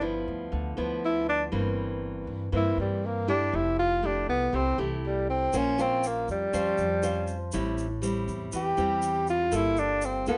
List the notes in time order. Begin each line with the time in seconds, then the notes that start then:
Already playing: G1 G2
0.01 F3 B3 E4
0.28 D2
0.52 D2 D3
0.77 D2 F3 B3 E4
1.05 E4
1.29 D4
1.52 G1 G2 E3 A#3 C4
2.27 G2
2.52 G2 E3 A#3 C4 E4
2.77 G2 G3
3.06 A#3
3.28 A3 D4 E4 G4
3.52 F1 F3 E4
3.79 F4
4.02 A3 D4 E4 G4
4.27 C2 B3
4.53 C2 C3 A3 C4 E4 G4
4.78 C2 E3 A3 E4 G4
5.06 G3
5.30 C4
5.53 A#1 A#3 C#4 F4 C5, shaker
5.57 C#4
5.78 C4 C#4 F4 C5, shaker
6.03 A#3, shaker
6.28 F2 G3, shaker
6.53 F2 F3 C#4 F4 C5, shaker
6.78 F2, shaker
7.03 C#4 F4 C5, shaker
7.27 shaker
7.52 A1 A2 G3 C4 E4, shaker
7.78 shaker
8.02 G3 C4 E4, shaker
8.28 E2, shaker
8.52 E2 E3, shaker
8.56 G4
8.77 E2 G3 C4 E4, shaker
9.02 shaker
9.27 F4, shaker
9.51 G1 G3 A#3 F4 A4, shaker
9.56 E4
9.77 D4, shaker
10.02 C4, shaker
10.26 D2 A#3 B3 F4 A4, shaker